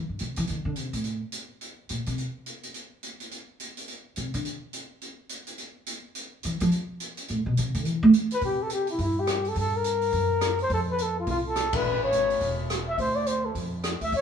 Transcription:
0.09 upright bass G2
0.19 upright bass C3, closed hi-hat
0.36 upright bass E3, closed hi-hat
0.47 upright bass D#3, closed hi-hat
0.65 upright bass D3
0.76 upright bass C3, closed hi-hat
0.93 upright bass A2, closed hi-hat
1.04 closed hi-hat
1.32 closed hi-hat
1.61 closed hi-hat
1.89 upright bass A#2, closed hi-hat
2.06 upright bass C3, closed hi-hat
2.18 closed hi-hat
2.46 closed hi-hat
2.63 closed hi-hat
2.74 closed hi-hat
3.03 closed hi-hat
3.20 closed hi-hat
3.31 closed hi-hat
3.60 closed hi-hat
3.77 closed hi-hat
3.88 closed hi-hat
4.16 upright bass C3, closed hi-hat
4.34 upright bass D3, closed hi-hat
4.45 closed hi-hat
4.73 closed hi-hat
5.01 closed hi-hat
5.29 closed hi-hat
5.47 closed hi-hat
5.58 closed hi-hat
5.86 closed hi-hat
6.15 closed hi-hat
6.43 upright bass E3, closed hi-hat
6.60 upright bass F3, closed hi-hat
6.71 closed hi-hat
7.00 closed hi-hat
7.17 closed hi-hat
7.28 upright bass A2, closed hi-hat
7.46 upright bass B2
7.57 upright bass C3, closed hi-hat
7.74 upright bass D3, closed hi-hat
7.85 upright bass E3, closed hi-hat
8.03 upright bass A3
8.13 closed hi-hat
8.31 flugelhorn B4, closed hi-hat
8.41 upright bass C3, flugelhorn G4, kick, open hi-hat
8.62 flugelhorn A4
8.70 flugelhorn G4, closed hi-hat
8.87 flugelhorn E4, open hi-hat
8.98 upright bass G2, flugelhorn E4, kick, open hi-hat
9.20 flugelhorn G4
9.27 cross-stick, closed hi-hat
9.45 flugelhorn A4, open hi-hat
9.55 upright bass G2, flugelhorn A4, kick, open hi-hat
9.76 flugelhorn A#4
9.84 closed hi-hat
10.01 open hi-hat
10.13 upright bass F#2, kick, open hi-hat
10.41 cross-stick, closed hi-hat
10.59 flugelhorn C5, open hi-hat
10.70 upright bass F2, flugelhorn A4, kick, open hi-hat
10.91 flugelhorn B4
10.98 flugelhorn A4, closed hi-hat
11.20 flugelhorn F4
11.27 upright bass C2, flugelhorn F4, kick, open hi-hat
11.48 flugelhorn A4
11.56 cross-stick, closed hi-hat
11.73 flugelhorn B4, kick, ride
11.84 upright bass A1
12.04 flugelhorn C#5
12.12 upright bass G#1, closed hi-hat
12.30 open hi-hat
12.41 upright bass E1, kick, open hi-hat
12.70 cross-stick, closed hi-hat
12.89 flugelhorn E5
12.98 upright bass D2, flugelhorn C5, kick, open hi-hat
13.16 flugelhorn D5
13.26 flugelhorn C5, closed hi-hat
13.45 flugelhorn A4
13.55 upright bass F2, kick, open hi-hat
13.84 cross-stick, closed hi-hat
14.01 upright bass D2, flugelhorn E5, open hi-hat
14.12 upright bass C#2, flugelhorn C#5, kick, open hi-hat

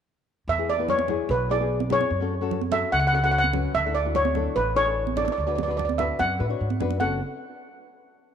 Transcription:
0.48 upright bass E2, steel pan E5
0.58 nylon-string guitar B3 E4 G#4
0.70 steel pan D5
0.78 nylon-string guitar B3 E4 B4
0.88 steel pan C#5, low conga
0.99 high conga
1.08 nylon-string guitar B3 E4 G#4, low conga
1.29 upright bass B1, steel pan B4
1.49 nylon-string guitar B3 E4 G#4, steel pan D5
1.60 nylon-string guitar B3 E4 G#4
1.80 high conga
1.90 nylon-string guitar B3 E4 G#4, steel pan C#5, low conga
2.01 high conga
2.10 upright bass F#2
2.20 nylon-string guitar C#4 F#4 A4
2.41 nylon-string guitar C#4 F#4 A4
2.51 low conga
2.61 high conga
2.71 nylon-string guitar C#4 F#4 A4, steel pan E5, low conga
2.92 upright bass C#2, steel pan F#5
3.00 steel pan F#5
3.07 steel pan F#5
3.12 nylon-string guitar C#4 F#4 A4, steel pan F#5
3.23 nylon-string guitar C#4 F#4 A4, steel pan F#5
3.32 steel pan F#5
3.38 steel pan F#5
3.44 high conga
3.53 nylon-string guitar C#4 F#4 B4, low conga
3.74 upright bass D2, steel pan E5
3.84 nylon-string guitar D4 E4 A4
3.95 steel pan D5
4.05 nylon-string guitar D4 E4 F#4
4.15 steel pan C#5, low conga
4.25 high conga
4.35 nylon-string guitar D4 E4 A4, low conga
4.56 upright bass A1, steel pan B4
4.75 nylon-string guitar D4 E4 A4, steel pan C#5
4.85 nylon-string guitar D4 E4 A4
5.07 high conga
5.16 nylon-string guitar D4 E4 A4, steel pan D5, low conga
5.25 steel pan D5, high conga
5.32 steel pan D5
5.38 upright bass D2, steel pan D5
5.46 nylon-string guitar D4 F#4 B4, steel pan D5
5.55 steel pan D5, high conga, low conga
5.63 nylon-string guitar D4, steel pan D5
5.68 nylon-string guitar F#4 B4, steel pan D5
5.77 steel pan D5, low conga
5.85 steel pan D5
5.89 high conga
5.98 nylon-string guitar D4 F#4 B4, steel pan E5, low conga
6.19 upright bass F#2, steel pan F#5, high conga
6.38 upright bass A2, nylon-string guitar D4 F#4 B4
6.48 nylon-string guitar D4 F#4 C#5
6.61 upright bass G#2
6.70 high conga
6.80 upright bass F#2, nylon-string guitar D4 F#4 B4, low conga
6.91 high conga
7.00 upright bass F#1, nylon-string guitar C#4 F#4 A4, steel pan F#5, high conga

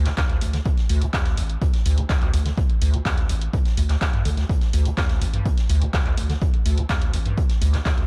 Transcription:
Already playing: sub bass D2
0.06 acid bass D3, snare, clap, closed hi-hat
0.17 acid bass D2, kick, snare, clap, closed hi-hat
0.29 acid bass D2, closed hi-hat
0.41 sub bass D2, acid bass D2, closed hi-hat, open hi-hat
0.53 acid bass D3, snare, closed hi-hat
0.65 acid bass D2, kick, closed hi-hat
0.77 snare, closed hi-hat
0.89 sub bass D2, acid bass D2, closed hi-hat, open hi-hat
1.01 acid bass D3, closed hi-hat
1.13 acid bass E2, kick, snare, clap, closed hi-hat
1.26 acid bass D2, snare, closed hi-hat
1.37 sub bass A1, acid bass D2, closed hi-hat, open hi-hat
1.49 closed hi-hat
1.62 acid bass D2, kick, closed hi-hat
1.74 snare, closed hi-hat
1.85 sub bass D2, acid bass D2, closed hi-hat, open hi-hat
1.98 acid bass D3, closed hi-hat
2.09 acid bass D2, kick, snare, clap, closed hi-hat
2.22 acid bass D2, clap, closed hi-hat
2.33 sub bass D2, acid bass D2, closed hi-hat, open hi-hat
2.46 acid bass D3, snare, closed hi-hat
2.58 acid bass D2, kick, closed hi-hat
2.70 closed hi-hat
2.81 sub bass D2, acid bass D2, closed hi-hat, open hi-hat
2.93 acid bass D3, closed hi-hat
3.05 acid bass E2, kick, snare, clap, closed hi-hat
3.17 acid bass D2, closed hi-hat
3.29 sub bass A1, acid bass D2, closed hi-hat, open hi-hat
3.42 closed hi-hat
3.53 acid bass D2, kick, closed hi-hat
3.65 snare, closed hi-hat
3.77 acid bass D2, sub bass D2, closed hi-hat, open hi-hat
3.89 acid bass D2, snare, clap, closed hi-hat
4.01 acid bass D2, kick, snare, clap, closed hi-hat
4.13 acid bass G2, closed hi-hat
4.25 sub bass D2, acid bass D3, closed hi-hat, open hi-hat
4.37 acid bass D2, snare, closed hi-hat
4.49 acid bass D2, kick, closed hi-hat
4.61 snare, closed hi-hat
4.73 acid bass D2, sub bass D2, closed hi-hat, open hi-hat
4.85 acid bass D3, closed hi-hat
4.97 acid bass E2, kick, snare, clap, closed hi-hat
5.09 acid bass D2, snare, closed hi-hat
5.21 sub bass A1, acid bass D2, closed hi-hat, open hi-hat
5.33 acid bass G2, closed hi-hat
5.45 acid bass D2, kick, closed hi-hat
5.58 snare, closed hi-hat
5.69 acid bass D2, sub bass D2, closed hi-hat, open hi-hat
5.81 acid bass D3, closed hi-hat
5.93 acid bass D2, kick, snare, clap, closed hi-hat
6.05 acid bass D2, clap, closed hi-hat
6.17 acid bass D2, sub bass D2, closed hi-hat, open hi-hat
6.29 acid bass D3, snare, closed hi-hat
6.41 acid bass D2, kick, closed hi-hat
6.54 closed hi-hat
6.66 acid bass D2, sub bass D2, closed hi-hat, open hi-hat
6.77 acid bass D3, closed hi-hat
6.89 acid bass E2, kick, snare, clap, closed hi-hat
7.02 acid bass D2, closed hi-hat
7.14 sub bass A1, acid bass D2, closed hi-hat, open hi-hat
7.26 acid bass G2, closed hi-hat
7.38 acid bass D2, kick, closed hi-hat
7.49 snare, closed hi-hat
7.61 sub bass D2, acid bass D2, closed hi-hat, open hi-hat
7.73 acid bass D3, snare, clap, closed hi-hat
7.85 acid bass D2, kick, snare, clap, closed hi-hat
7.98 acid bass D2, closed hi-hat

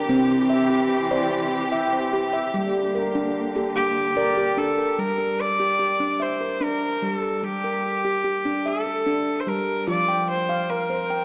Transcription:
Already playing: string section G4, handpan A#4
0.08 handpan C3 C4, string section E3 C4
0.50 handpan E5
0.70 handpan G4
1.11 handpan C5 D5
1.31 handpan C5
1.72 handpan E5 G5
1.93 handpan C5
2.13 handpan G4
2.33 handpan E5
2.53 string section D3 A#3, handpan G3
2.95 handpan A#4
3.15 handpan D4
3.56 handpan G4 A4
3.76 cello G4, handpan G4
4.16 handpan A#4 D5
4.37 handpan G4
4.57 handpan D4, cello A4
4.78 handpan A#4
4.98 handpan G3, cello A#4
5.18 handpan A#4
5.41 cello D5
5.60 handpan G4
5.79 handpan G4
6.00 handpan D4
6.20 cello C5, handpan E5
6.41 handpan A#4
6.61 handpan D4, cello A#4
7.02 handpan G3, cello A4
7.43 handpan G3, cello G4
7.64 handpan A#4
8.05 handpan G4
8.24 handpan G4
8.45 handpan D4
8.66 cello A4, handpan E5
8.86 handpan A4
9.06 handpan D4
9.40 cello C5
9.47 handpan G3, cello A#4
9.87 handpan F3 F4, cello D5
10.08 handpan G5
10.30 cello C5
10.49 handpan F5
10.70 cello A#4, handpan F5
10.90 handpan C5
11.10 handpan G5

